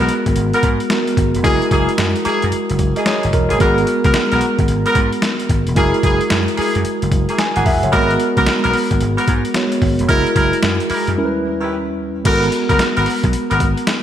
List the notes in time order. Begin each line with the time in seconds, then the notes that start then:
Already playing: G#3 B3 F#4 A#4
0.00 B3 F#4 A#4
0.09 closed hi-hat
0.26 G#1, kick, closed hi-hat
0.36 G#1, closed hi-hat
0.53 B3 F#4 A#4, closed hi-hat
0.63 G#2, kick, closed hi-hat
0.80 closed hi-hat
0.90 G#3 B3 F#4 A#4, snare, closed hi-hat
1.07 closed hi-hat
1.17 G#1, kick, closed hi-hat
1.35 E1, closed hi-hat
1.43 F#1 G#3 A#3 E4 F#4 G#4 A#4, kick, closed hi-hat
1.62 closed hi-hat
1.71 F#1 A#3 E4 G#4, kick, closed hi-hat
1.89 closed hi-hat
1.98 F#2, snare, closed hi-hat
2.16 closed hi-hat
2.25 A#3 E4 G#4, muted slap bass stroke, closed hi-hat
2.42 F#2, closed hi-hat
2.52 muted slap bass stroke, closed hi-hat
2.70 F#1, closed hi-hat
2.79 kick, closed hi-hat
2.96 A#3 E4 G#4 D#5, closed hi-hat
3.06 A#3 E4 G#4 C#5, snare, closed hi-hat
3.23 G#1, closed hi-hat
3.33 E1 A#4, kick, closed hi-hat
3.50 F#1 A#3 E4 G#4, closed hi-hat
3.59 G#1 G#3 B3 F#4 A#4, kick, closed hi-hat
3.78 closed hi-hat
3.87 closed hi-hat
4.04 C#2 B3 F#4 A#4, kick, closed hi-hat
4.14 snare, closed hi-hat
4.31 B1 B3 F#4 A#4, closed hi-hat
4.41 closed hi-hat
4.59 G#1, kick, closed hi-hat
4.68 G#1, closed hi-hat
4.85 B3 F#4 A#4, closed hi-hat
4.95 G#2, kick, closed hi-hat
5.13 closed hi-hat
5.22 snare, closed hi-hat
5.40 closed hi-hat
5.49 G#1, kick, closed hi-hat
5.67 E1, closed hi-hat
5.75 F#1 G#3 A#3 E4 F#4 G#4 A#4, kick, closed hi-hat
5.94 closed hi-hat
6.03 F#1 A#3 E4 G#4, kick, closed hi-hat
6.21 closed hi-hat
6.30 F#2, snare, closed hi-hat
6.48 closed hi-hat
6.57 A#3 E4 G#4, muted slap bass stroke, open hi-hat
6.75 F#2, closed hi-hat
6.85 muted slap bass stroke, closed hi-hat
7.02 F#1, closed hi-hat
7.12 kick, closed hi-hat
7.29 A#3 E4 G#4, closed hi-hat
7.38 G#5, snare, closed hi-hat
7.56 G#1 A#3 E4 G#4 F#5, closed hi-hat
7.66 E1 E5, kick, open hi-hat
7.83 F#1 C#5, closed hi-hat
7.92 G#1 G#3 A#3 B3 F#4 A#4, kick, closed hi-hat
7.99 B3
8.10 closed hi-hat
8.20 closed hi-hat
8.37 C#2 B3 F#4 A#4, kick, closed hi-hat
8.47 snare, closed hi-hat
8.64 B1 B3 F#4 A#4, closed hi-hat
8.73 open hi-hat
8.91 G#1, kick, closed hi-hat
9.01 G#1, closed hi-hat
9.18 B3 F#4 A#4, closed hi-hat
9.28 G#2, kick, closed hi-hat
9.45 closed hi-hat
9.54 G#3 B3 F#4 C#5, snare, closed hi-hat
9.72 closed hi-hat
9.82 G#1, kick, open hi-hat
9.99 E1, closed hi-hat
10.08 F#1 G#3 E4 F#4 G#4 A#4, kick, closed hi-hat
10.27 closed hi-hat
10.35 F#1 E4 G#4 A#4, kick, closed hi-hat
10.53 closed hi-hat
10.63 F#2, snare, closed hi-hat
10.80 closed hi-hat
10.90 E4 G#4 A#4, muted slap bass stroke, open hi-hat
11.07 F#2, closed hi-hat
11.16 D#2 G3 C#4 E4 A#4
11.25 B4
11.61 D#3 C#4 E4 G4 B4
12.24 G#1 G#3 B3 F#4 A4 A#4, kick, closed hi-hat, crash
12.33 A#4
12.43 closed hi-hat
12.52 closed hi-hat
12.69 F#1 B3 F#4 A#4, kick, closed hi-hat
12.79 snare, closed hi-hat
12.96 G#1 B3 F#4 A#4, closed hi-hat
13.06 open hi-hat
13.24 B1, kick, closed hi-hat
13.33 muted slap bass stroke, closed hi-hat
13.50 G#1 B3 F#4 A#4, closed hi-hat
13.60 kick, closed hi-hat
13.77 closed hi-hat
13.87 snare, closed hi-hat